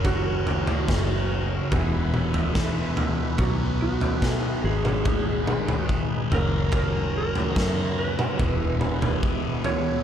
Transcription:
<<
  \new Staff \with { instrumentName = "Electric slide guitar" } { \time 4/4 \key e \lydian \tempo 4 = 72 fis'2. r4 | fis'8 fis'4 gis'4. r8 ais'8 | ais'8 ais'4 b'4. r8 cis''8 | }
  \new Staff \with { instrumentName = "Tonewheel organ" } { \time 4/4 \key e \lydian << { ais'2 b'2~ | b'2.~ b'8 ais''8~ | ais''2 b2 | } \\ { cis'2 e'2 | dis'2.~ dis'8 cis'8~ | cis'2 e'2 | } >> }
  \new Staff \with { instrumentName = "Tonewheel organ" } { \clef bass \time 4/4 \key e \lydian fis2 gis2 | fis4. gis2 fis8~ | fis2 gis2 | }
  \new Staff \with { instrumentName = "Distorted electric guitar" } { \clef bass \time 4/4 \key e \lydian <fis, cis fis>2 <e, b, e>2 | <b, fis b>4. <gis, dis gis>2 <fis, cis fis>8~ | <fis, cis fis>2 <e, b, e>2 | }
  \new Staff \with { instrumentName = "Fingered electric bass" } { \clef bass \time 4/4 \key e \lydian fis,,4 fis,,4 e,,2 | b,,4 b,8 gis,,2 fis,,8~ | fis,,4 fis,4 e,,2 | }
  \new DrumStaff \with { instrumentName = "Drums" } \drummode { \time 4/4 <bd tomfh>8 tomfh16 tomfh16 <bd sn>4 <bd tomfh toml>8 toml16 tomfh16 <bd sn>8 tomfh8 | <bd tomfh>8. tomfh16 <bd sn>8. toml16 <bd tomfh>8 toml16 <tomfh toml>16 bd8 tomfh8 | <bd tomfh>8. tomfh16 <bd sn>8. toml16 <bd tomfh>8 toml16 <tomfh toml>16 bd8 tomfh8 | }
>>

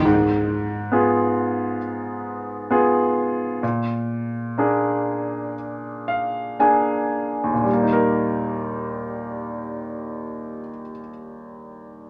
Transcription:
\new Staff \with { instrumentName = "Grand piano" } { \time 4/4 \key ees \major \tempo 4 = 60 aes,4 <ces' f' aes'>4 r4 <ces' f' aes'>4 | bes,4 <bes d' aes'>4 r8 f''8 <bes d' aes' aes''>4 | <ees, bes, g bes ees' bes'>1 | }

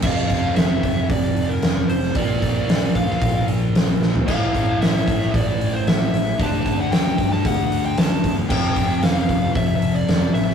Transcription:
<<
  \new Staff \with { instrumentName = "Lead electric guitar" } { \time 4/4 \key f \major \tempo 4 = 114 f''4 e''4 d''8. bes'8. c''8 | d''4. f''4 r4. | f''4 e''4 d''8. c''16 e''4 | a''8. fis''16 g''8. a''16 fis''8. g''16 a''8. r16 |
g''4 f''4 e''8. d''8. e''8 | }
  \new Staff \with { instrumentName = "Overdriven electric guitar" } { \clef bass \time 4/4 \key f \major <f, c f>1 | <bes, f bes>1 | <a, e a>1 | <d a d'>1 |
<f, c f>1 | }
  \new Staff \with { instrumentName = "Picked electric bass" } { \clef bass \time 4/4 \key f \major f,,8 f,,8 f,,8 f,,8 f,,8 f,,8 f,,8 f,,8 | bes,,8 bes,,8 bes,,8 d,8 bes,,8 bes,,8 bes,,8 bes,,8 | a,,8 a,,8 a,,8 a,,8 a,,8 a,,8 a,,8 a,,8 | d,8 d,8 d,8 g,8 d,8 d,8 d,8 e,8 |
f,,8 f,,8 f,,8 f,,8 f,,8 f,,8 f,,8 a,,8 | }
  \new DrumStaff \with { instrumentName = "Drums" } \drummode { \time 4/4 <cymc bd>8 <hho bd>8 <hho sn>8 <hho bd>8 <hho bd>8 hho8 <hho sn>8 hho16 sn16 | <hho bd>8 <hho bd>8 <hho sn>8 <hho bd>16 sn16 <hho bd>8 hho8 <hho sn>8 sn16 tomfh16 | <cymc bd>8 <hho bd>8 <hho sn>8 <hho bd>16 sn16 <hho bd>8 hho8 <hho sn>8 <hho sn>8 | <hho bd>8 <hho bd>8 <hho sn>8 <hho bd>16 sn16 <hho bd>8 hho8 <hho sn>8 <hho bd sn>8 |
<cymc bd>8 <hho bd>8 <hho sn>8 <hho bd>8 <hho bd>8 hho8 <hho sn>8 <hho sn>16 sn16 | }
>>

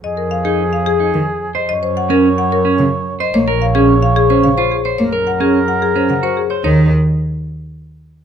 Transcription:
<<
  \new Staff \with { instrumentName = "Marimba" } { \time 3/4 \key f \phrygian \tempo 4 = 109 ees''16 bes'16 f''16 aes'16 r16 f''16 aes'16 r4 ees''16 | ees''16 c''16 ges''16 bes'16 r16 ges''16 bes'16 r4 ees''16 | des''16 bes'16 f''16 aes'16 r16 f''16 aes'16 c''16 f''16 c''16 aes'16 des''16 | des''16 bes'16 ges''16 aes'16 r16 ges''16 aes'16 c''16 ges''16 c''16 aes'16 des''16 |
des''8 r2 r8 | }
  \new Staff \with { instrumentName = "Oboe" } { \time 3/4 \key f \phrygian aes'2~ aes'8. r16 | des''2~ des''8. r16 | des''2~ des''8. r16 | bes'2~ bes'8. r16 |
r2. | }
  \new Staff \with { instrumentName = "Clean electric guitar" } { \time 3/4 \key f \phrygian r8. ees'16 r8. ees'16 r8. c''16 | r8. des'16 r8. des'16 r8. c''16 | r16 bes'16 r16 des'16 r8. des'16 r16 f'16 r16 c''16 | r16 bes'16 r16 des'16 r8. des'16 r16 ges'16 r16 c''16 |
ees'8 r2 r8 | }
  \new Staff \with { instrumentName = "Cello" } { \clef bass \time 3/4 \key f \phrygian r2 ees16 r8. | r2 des16 r8. | bes16 r4. r16 des16 r8. | bes16 r4. r16 des16 r8. |
ees8 r2 r8 | }
  \new Staff \with { instrumentName = "Double bass" } { \clef bass \time 3/4 \key f \phrygian f,2. | ges,2. | bes,,2. | ges,2. |
ees,8 r2 r8 | }
>>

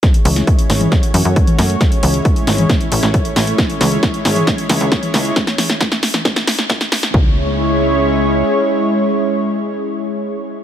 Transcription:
<<
  \new Staff \with { instrumentName = "Analog synth pad" } { \time 4/4 \key cis \minor \tempo 4 = 135 <gis cis' e' cis''>8 <gis cis' e' cis''>8 <gis cis' e' cis''>8 <gis cis' e' cis''>8 <a cis' fis' cis''>8 <a cis' fis' cis''>8 <a cis' fis' cis''>8 <a cis' fis' cis''>8 | <gis cis' e' cis''>8 <gis cis' e' cis''>8 <gis cis' e' cis''>8 <gis cis' e' cis''>8 <a cis' e' cis''>8 <a cis' e' cis''>8 <a cis' e' cis''>8 <a cis' e' cis''>8 | <gis cis' e' cis''>8 <gis cis' e' cis''>8 <gis cis' e' cis''>8 <gis cis' e' cis''>8 <gis cis' e' cis''>8 <gis cis' e' cis''>8 <gis cis' e' cis''>8 <gis cis' e' cis''>8 | r1 |
<gis cis' e' cis''>1~ | <gis cis' e' cis''>1 | }
  \new Staff \with { instrumentName = "Analog synth bass" } { \clef bass \time 4/4 \key cis \minor r8 cis,8 r8 gis,,8 r8 fis,16 fis,8 r16 fis,8 | r8 cis,8 r8 gis,,8 r8 a,,16 a,,8 r16 a,,8 | r8 cis,8 r8 gis,,8 r8 cis,16 cis,8 r16 cis,8 | r1 |
cis,2. r4 | r1 | }
  \new DrumStaff \with { instrumentName = "Drums" } \drummode { \time 4/4 <hh bd sn>16 hh16 <hho toml>16 <hh sn>16 <hh bd>16 hh16 <hho sn>16 <hh toml>16 <hh bd sn>16 hh16 <hho toml>16 hh16 <hh bd>16 <hh toml>16 <hho sn>16 hh16 | <hh bd sn>16 hh16 <hho toml>16 hh16 <hh bd>16 hh16 <hho sn>16 <hh toml>16 <hh bd sn>16 hh16 hho16 <hh sn>16 <hh bd>16 hh16 <hho sn>16 hh16 | <hh bd sn>16 hh16 <hho sn toml>16 hh16 <hh bd sn>16 hh16 <hho sn>16 <hh toml>16 <hh bd sn>16 hh16 <hho sn toml>16 hh16 <hh bd sn>16 <hh toml>16 <hho sn>16 hh16 | <hh bd sn>16 <hh sn>16 <hho sn toml>16 <hh sn>16 <hh bd sn>16 <hh sn>16 <hho sn>16 <hh sn toml>16 <hh bd sn>16 <hh sn>16 <hho sn>16 <hh sn>16 <hh bd sn>16 <hh sn>16 <hho sn>16 <hh sn>16 |
bd4 r4 r4 r4 | r4 r4 r4 r4 | }
>>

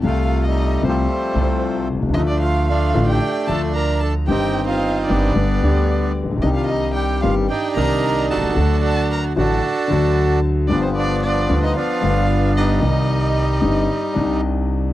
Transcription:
<<
  \new Staff \with { instrumentName = "Violin" } { \time 4/4 \key c \dorian \tempo 4 = 113 f''8. ees''8. c''2 r8 | ees''16 d''16 f''8 f''8. g''8. a''8 bes''8 a''8 | g''8. f''8. d''2 r8 | ees''16 f''16 ees''8 g''8 f''8 g''8 bes''4 a''8~ |
a''8 a''8 bes''8 a''2 r8 | d''16 c''16 d''8 d''8. ees''16 f''4. ees''8~ | ees''2. r4 | }
  \new Staff \with { instrumentName = "Bandoneon" } { \time 4/4 \key c \dorian f'8. ees'8. c'2 r8 | ees'16 d'16 f'8 f'8. g'8. a'8 bes'8 a'8 | g'8. f'8. d'2 r8 | ees'16 f'16 ees'8 g'8 f'8 g'8 bes'4 a'8~ |
a'8 a'8 bes'8 a'2 r8 | d'16 c'16 d'8 d'8. ees'16 f'4. ees'8~ | ees'2. r4 | }
  \new Staff \with { instrumentName = "Bandoneon" } { \time 4/4 \key c \dorian a8. <g a>8. <f a>2 r8 | a4 <a d'>8. d'2 r16 | <c' ees'>8. c'8. <g b>2 r8 | g2 <d' ees'>8 <d' ees'>4 <d' fis'>8~ |
<d' fis'>4. <d' fis'>2 r8 | <f b>4 <f b>4 <b d'>4. g8~ | g2. r4 | }
  \new Staff \with { instrumentName = "Grand piano" } { \clef bass \time 4/4 \key c \dorian << { <c, c g a f'>4. <c, c g a f'>8 r8 <c, c g a f'>4. | <d, d f a f'>4. <a,, a, d f a f'>8 r8 <d, d f a f'>4. | <g,, g, ees g c' g'>4. <g,, g, ees g c' g'>8 <g,, g, d g b g'>8 <d, d g b g'>4. | <c, c ees c' d' g'>4. <g,, g, ees c' d' g'>8 r8 <c, c ees c' g' d''>4. |
<d, d fis a fis'>4. <a,, a, d fis a fis'>8 r8 <d, d fis a fis'>4. | <g,, g, d g b f'>4. <d, d g b f'>8 r8 <g,, g, d g b f'>4. | <c, c ees g c' ees'>4. <g,, g, d g c' ees'>8 r8 <c, c g c' d' ees'>4. | } \\ { r2. r8 r32 b,,32 c,32 des,32 | r1 | r2. r8 r32 a,,32 bes,,32 b,,32 | r2. r8 r32 b,,32 c,32 des,32 |
r1 | r1 | r1 | } >> }
  \new Staff \with { instrumentName = "Upright bass" } { \clef bass \time 4/4 \key c \dorian c,4~ c,16. r32 c,16. r8 r32 c,4~ c,32 b,,32 c,32 des,32 | d,4~ d,16. r32 a,,16. r8 r32 d,4~ d,16. r32 | g,,4~ g,,16. r32 g,,16. r32 g,,16. r32 d,4~ d,32 a,,32 bes,,32 b,,32 | c,4~ c,16. r32 g,,16. r8 r32 c,4~ c,32 b,,32 c,32 des,32 |
d,4~ d,16. r32 a,,16. r8 r32 d,4~ d,16. r32 | g,,4~ g,,16. r32 d,16. r8 r32 g,,4~ g,,16. r32 | c,4~ c,16. r32 g,,16. r8 r32 c,4~ c,16. r32 | }
>>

